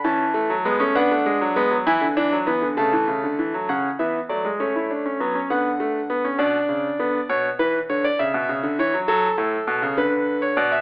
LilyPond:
<<
  \new Staff \with { instrumentName = "Grand piano" } { \time 6/8 \key b \minor \tempo 4. = 67 << { a''4. fis''4. | gis''4. a''4. | fis''8 e''8 d''8 cis''4. | fis''4. d''4. |
cis''8 b'8 cis''16 d''16 e''4 cis''8 | a'4. b'8. cis''16 d''16 e''16 | } \\ { cis'8 a8 b16 cis'16 d'4 b8 | e'8 d'8 b8 a4. | cis'8 b8 a8 cis'16 e'16 d'16 cis'16 b16 cis'16 | b8 a8 b16 cis'16 d'4 b8 |
r2. | r2. | } >> }
  \new Staff \with { instrumentName = "Grand piano" } { \clef bass \time 6/8 \key b \minor e8. fis16 gis16 a16 b16 a16 gis16 fis16 gis16 fis16 | e16 d16 e16 fis16 e16 d16 cis16 e16 cis16 d16 e16 fis16 | cis8 e8 fis16 gis16 a4 fis8 | d4. b,8 cis8 d8 |
b,8 e8 d8 cis16 b,16 cis16 d16 e16 fis16 | fis8 a,8 b,16 cis16 d4 b,8 | }
>>